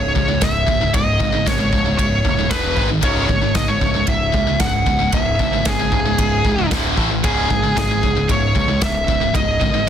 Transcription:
Already playing: C#1 C#2 G#2 C#5
0.15 C#2 G#2, kick
0.29 C#2 G#2
0.41 C#1 C#2 G#2 E5, kick, snare, ride bell
0.68 C#2 G#2, kick
0.82 C#2 G#2
0.94 C#1 C#2 G#2 D#5, kick, ride bell
1.20 G#1 C#2 G#2, kick
1.34 C#2 G#2
1.46 G#1 C#2 G#2 C#5, kick, snare, ride bell
1.59 C#2 G#2
1.72 C#1 C#2 G#2, kick
1.85 C#2 G#2
1.98 C#1 C#2 G#2 C#5, kick, ride bell
2.24 D#1 C#2 G#2, kick
2.37 C#2 G#2
2.50 E1 E2 B2 E3 B4, kick, snare, ride bell
2.77 G#1 G#2 D#3 G#3, kick
2.90 G#2 D#3
3.03 C#1 C#2 G#2 C#3 C#5, kick, ride bell
3.29 G#1 C#2 G#2, kick
3.42 C#2 G#2
3.55 G#1 C#2 G#2 D#5, kick, snare, ride bell
3.68 C#2 G#2 C#5
3.81 C#1 C#2 G#2, kick
3.94 C#2 G#2
4.07 C#1 C#2 G#2 E5, kick, ride bell
4.34 C#2 G#2, kick
4.47 C#2 G#2
4.60 C#1 C#2 G#2 F#5, kick, snare, ride bell
4.87 C#2 G#2, kick
5.01 C#2 G#2
5.12 C#1 C#2 G#2 E5, kick, ride bell
5.39 G#1 C#2 G#2, kick
5.52 C#2 G#2
5.65 G#1 C#2 G#2 G#4, kick, snare, ride bell
5.79 C#2 G#2
5.92 C#1 C#2 G#2, kick
6.05 C#2 G#2
6.18 C#1 C#2 G#2, kick, ride bell
6.44 C#1 C#2 G#2, kick
6.58 C#2 G#2
6.70 D1 D2 A2 D3, kick, snare, ride bell
6.97 A1 A2 E3 A3, kick
7.11 A2 E3
7.23 C#1 C#2 G#2 C#3 G#4, kick, ride bell
7.49 G#1 C#2 G#2, kick
7.62 C#2 G#2
7.75 G#1 C#2 G#2 G#4, kick, snare, ride bell
7.88 C#2 G#2
8.02 C#1 C#2 G#2, kick
8.15 C#2 G#2
8.28 C#1 C#2 G#2 C#5, kick, ride bell
8.55 C#2 G#2, kick
8.68 C#2 G#2
8.80 C#1 C#2 G#2 E5, kick, snare, ride bell
9.07 C#2 G#2, kick
9.20 C#2 G#2
9.34 C#1 C#2 G#2 D#5, kick, ride bell
9.60 G#1 C#2 G#2, kick
9.74 C#2 G#2

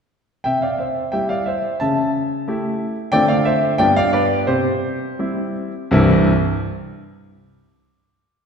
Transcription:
0.44 C3 E5 G5
0.62 D5 F5
0.79 C5 E5
1.12 G3 E4 G4 E5 G5
1.29 D5 F5
1.46 C5 E5
1.80 C#3 E5 A5
2.48 A3 E4 G4
3.12 D3 A3 C4 F4 D5 G5
3.28 D5 F5
3.45 C5 E5
3.78 G2 G3 B3 F4 D5 G5
3.96 D5 F5
4.13 B4 D5
4.47 C3 G4 C5
5.19 G3 C4 E4
5.91 C2 G2 E3 G3 C4 E4

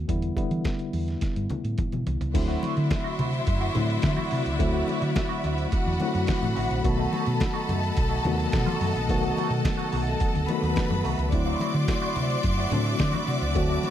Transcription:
Already playing: D#3 B3 F#4
0.08 E2 D3 G3 B3 E4, kick, closed hi-hat
0.22 closed hi-hat
0.36 D3 G3 B3 E4, kick, closed hi-hat, muted conga
0.51 E3, closed hi-hat
0.65 kick, snare, closed hi-hat, high conga
0.79 closed hi-hat
0.93 E2, open hi-hat, muted conga
1.08 snare, closed hi-hat
1.21 kick, snare, closed hi-hat
1.36 G2, closed hi-hat
1.50 closed hi-hat, high tom, muted conga, low conga
1.64 A2, closed hi-hat
1.78 kick, closed hi-hat, mid tom, high conga
1.92 B2, closed hi-hat, mid tom, high conga
2.06 C2, closed hi-hat, floor tom, high conga
2.21 C#2, closed hi-hat, floor tom
2.34 D2 D3 F3 A3 C4 E4 F#4 D5 E5 C6, muted clean electric guitar stroke, kick, closed hi-hat, crash
2.41 F#3
2.48 C4 E4 F#4
2.62 C4 E4 F#4, closed hi-hat, muted conga
2.76 D3, muted clean electric guitar stroke, closed hi-hat
2.90 muted clean electric guitar stroke, kick, snare, closed hi-hat, high conga
3.04 C4 E4 F#4
3.18 C3 C4 E4 F#4, closed hi-hat, muted conga, low conga
3.32 muted clean electric guitar stroke, closed hi-hat
3.47 F#2, muted clean electric guitar stroke, kick, closed hi-hat
3.60 C4 E4 F#4
3.74 A2 D3 F#3 A3 C4 E4, muted clean electric guitar stroke, closed hi-hat, muted conga, low conga
3.89 muted clean electric guitar stroke, closed hi-hat
4.02 D3, muted clean electric guitar stroke, kick, snare, closed hi-hat, high conga
4.17 C4 E4 F#4, high conga
4.31 C3 C4 E4 F#4, open hi-hat
4.45 C#2, muted clean electric guitar stroke, closed hi-hat
4.59 D2 D3 F#3 A3 C4 E4 B5, muted clean electric guitar stroke, kick, closed hi-hat
4.73 C4 E4 F#4
4.87 C4 E4 F#4, closed hi-hat, muted conga
5.02 D3, muted clean electric guitar stroke, closed hi-hat
5.15 muted clean electric guitar stroke, kick, snare, closed hi-hat, high conga
5.29 C4 E4 F#4
5.43 D2 C4 E4 F#4, closed hi-hat, muted conga
5.58 muted clean electric guitar stroke, closed hi-hat
5.72 F#4 F#5, muted clean electric guitar stroke, kick, closed hi-hat
5.86 E2, muted clean electric guitar stroke
6.00 D3 F#3 A3 C4 E4, closed hi-hat, muted conga
6.08 F#4
6.14 F#2, muted clean electric guitar stroke, closed hi-hat
6.27 kick, snare, closed hi-hat, high conga
6.42 A2, muted clean electric guitar stroke, high conga
6.56 A1 C4 E4 F#4, open hi-hat
6.70 A#1, muted clean electric guitar stroke, closed hi-hat
6.84 B1 D#3 F#3 A3 B3 F#4 A4 D#5 F#5 A5, kick, closed hi-hat
6.98 A3 D#4 F#4
7.12 A3 D#4 F#4, closed hi-hat, muted conga
7.26 B2, muted clean electric guitar stroke, closed hi-hat
7.40 muted clean electric guitar stroke, kick, snare, closed hi-hat, high conga
7.54 A3 D#4 F#4
7.67 F#2 A3 D#4 F#4, closed hi-hat, muted conga, low conga
7.82 muted clean electric guitar stroke, closed hi-hat
7.95 B1, muted clean electric guitar stroke, kick, closed hi-hat
8.10 A3 D#4 F#4
8.24 D#2 C3 F#3 A3 B3 F#4, muted clean electric guitar stroke, closed hi-hat, muted conga, low conga
8.31 D#3
8.38 muted clean electric guitar stroke, closed hi-hat
8.52 B2, muted clean electric guitar stroke, kick, snare, closed hi-hat, high conga
8.66 A3 D#4 F#4, high conga
8.80 F#2 A3 D#4 F#4, open hi-hat
8.94 A#1, muted clean electric guitar stroke, closed hi-hat
9.08 B1 D#3 F#3 A3 B3 F#4 A5, muted clean electric guitar stroke, kick, closed hi-hat
9.22 A3 D#4 F#4, closed hi-hat
9.36 A3 D#4 F#4, closed hi-hat, muted conga
9.50 B2, muted clean electric guitar stroke, closed hi-hat
9.64 muted clean electric guitar stroke, kick, snare, closed hi-hat, high conga
9.78 A3 D#4 F#4, closed hi-hat
9.91 B1 A3 D#4 F#4, open hi-hat
10.06 muted clean electric guitar stroke, snare, closed hi-hat
10.20 muted clean electric guitar stroke, kick, closed hi-hat
10.34 D2, muted clean electric guitar stroke, closed hi-hat
10.48 D#3 F#3 A3 B3 F#4 B4 B5, closed hi-hat, muted conga
10.62 D#2, muted clean electric guitar stroke, closed hi-hat
10.76 kick, snare, closed hi-hat, high conga
10.90 F#2, muted clean electric guitar stroke, closed hi-hat, high conga
11.04 C2 A3 D#4 F#4, open hi-hat
11.18 C#2, muted clean electric guitar stroke, closed hi-hat
11.32 D2 D3 F#3 A3 C4 E4 F#4 D5 E5 C6 D6, kick, closed hi-hat
11.46 C4 E4 F#4
11.60 C4 E4 F#4, closed hi-hat, muted conga
11.74 D3, muted clean electric guitar stroke, closed hi-hat
11.88 muted clean electric guitar stroke, kick, snare, closed hi-hat, high conga
12.02 C4 E4 F#4
12.16 C3 C4 E4 F#4, closed hi-hat, low conga
12.30 muted clean electric guitar stroke, closed hi-hat
12.43 F#2, muted clean electric guitar stroke, kick, closed hi-hat
12.58 C4 E4 F#4
12.71 A2 D3 F#3 A3 C4 D4, muted clean electric guitar stroke, closed hi-hat, muted conga, low conga
12.85 muted clean electric guitar stroke, closed hi-hat
12.99 D3, muted clean electric guitar stroke, kick, snare, closed hi-hat, high conga
13.13 C4 E4 F#4, high conga
13.27 C3 C4 E4 F#4, open hi-hat
13.41 C#2, muted clean electric guitar stroke, closed hi-hat
13.55 D2 D3 F#3 A3 C4 F#4 A5, muted clean electric guitar stroke, kick, closed hi-hat
13.69 C4 E4 F#4
13.83 C4 E4 F#4, closed hi-hat, muted conga

